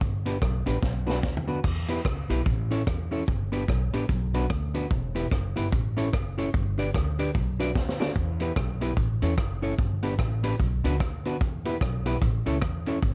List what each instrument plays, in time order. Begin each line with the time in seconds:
0.01 upright bass G1, kick, closed hi-hat
0.26 hollow-body jazz guitar B3 D4 G4 B4, closed hi-hat
0.42 upright bass B1, kick, cross-stick, closed hi-hat
0.66 upright bass A1, hollow-body jazz guitar B3 D4 G4 B4, closed hi-hat
0.83 upright bass B1, kick, snare
1.07 hollow-body jazz guitar B3 D4 F#4 B4, snare
1.23 upright bass D2, kick, snare
1.37 floor tom
1.47 hollow-body jazz guitar B3 D4 F#4 B4
1.64 upright bass E2, kick, crash
1.88 hollow-body jazz guitar B3 E4 G4 B4, closed hi-hat
2.05 upright bass C#2, kick, cross-stick, closed hi-hat
2.29 upright bass B1, hollow-body jazz guitar B3 E4 G4 B4, closed hi-hat
2.46 upright bass A1, kick, closed hi-hat
2.71 hollow-body jazz guitar C#4 E4 A4 C#5, closed hi-hat
2.87 upright bass E2, muted hollow-body jazz guitar stroke, kick, cross-stick, closed hi-hat
3.11 hollow-body jazz guitar C#4 E4 A4 C#5, open hi-hat
3.28 upright bass G1, kick, closed hi-hat
3.52 hollow-body jazz guitar B3 D4 G4 B4, closed hi-hat
3.68 upright bass B1, kick, cross-stick, closed hi-hat
3.93 upright bass A1, hollow-body jazz guitar B3 D4 G4 B4, closed hi-hat
4.09 upright bass B1, kick, closed hi-hat
4.34 hollow-body jazz guitar B3 D4 F#4 B4, closed hi-hat
4.50 upright bass D2, kick, cross-stick, closed hi-hat
4.74 hollow-body jazz guitar B3 D4 F#4 B4, closed hi-hat
4.90 upright bass E1, kick, closed hi-hat
5.15 hollow-body jazz guitar B3 E4 G4 B4, closed hi-hat
5.31 upright bass F#1, kick, cross-stick, closed hi-hat
5.56 upright bass G1, hollow-body jazz guitar B3 E4 G4 B4, closed hi-hat
5.72 upright bass A1, kick, closed hi-hat
5.97 hollow-body jazz guitar C#4 E4 A4 C#5, closed hi-hat
6.13 upright bass F#1, kick, cross-stick, closed hi-hat
6.38 hollow-body jazz guitar C#4 E4 A4 C#5, closed hi-hat
6.54 upright bass G1, kick, closed hi-hat
6.78 hollow-body jazz guitar D4 G4 B4 D5, closed hi-hat
6.94 upright bass D2, kick, cross-stick, closed hi-hat
7.19 hollow-body jazz guitar D4 G4 B4 D5, closed hi-hat
7.35 upright bass B1, kick, closed hi-hat
7.60 hollow-body jazz guitar D4 F#4 B4 D5, closed hi-hat
7.75 upright bass D2, kick, snare
7.89 snare
8.00 hollow-body jazz guitar D4 F#4 A4 D5, snare
8.15 upright bass E2, kick, closed hi-hat
8.40 hollow-body jazz guitar B3 E4 G4 B4, closed hi-hat
8.56 upright bass B1, kick, cross-stick, closed hi-hat
8.81 hollow-body jazz guitar B3 E4 G4 B4, closed hi-hat
8.97 upright bass A1, kick, closed hi-hat
9.22 upright bass E2, hollow-body jazz guitar C#4 E4 A4 C#5, closed hi-hat
9.38 upright bass F#1, kick, cross-stick, closed hi-hat
9.62 hollow-body jazz guitar C#4 E4 A4 C#5, open hi-hat
9.79 upright bass G1, kick, closed hi-hat
10.03 hollow-body jazz guitar B3 D4 G4 B4, closed hi-hat
10.19 upright bass A1, kick, cross-stick, closed hi-hat
10.43 hollow-body jazz guitar B3 D4 G4 B4, closed hi-hat
10.60 upright bass B1, kick, closed hi-hat
10.84 upright bass C#2, hollow-body jazz guitar B3 D4 F#4 B4, closed hi-hat
11.00 upright bass D2, kick, cross-stick, closed hi-hat
11.25 hollow-body jazz guitar B3 D4 F#4 B4, closed hi-hat
11.41 upright bass E2, kick, closed hi-hat
11.65 hollow-body jazz guitar B3 E4 G4 B4, closed hi-hat
11.81 upright bass B1, kick, cross-stick, closed hi-hat
12.06 hollow-body jazz guitar B3 E4 G4 B4, closed hi-hat
12.22 upright bass A1, kick, closed hi-hat
12.46 upright bass C#2, hollow-body jazz guitar C#4 E4 A4 C#5, closed hi-hat
12.62 kick, cross-stick, closed hi-hat
12.86 hollow-body jazz guitar C#4 E4 A4 C#5, closed hi-hat
13.02 upright bass G1, kick, closed hi-hat